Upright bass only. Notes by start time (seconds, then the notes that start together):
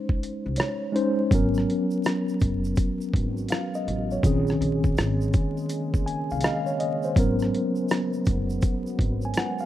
0.46 C2
1.32 G#1
2.42 F#1
3.14 G#1
3.87 A1
4.24 A#1
4.61 A#1
4.98 G#1
6.32 C2
7.16 G#1
8.27 F#1
8.99 G#1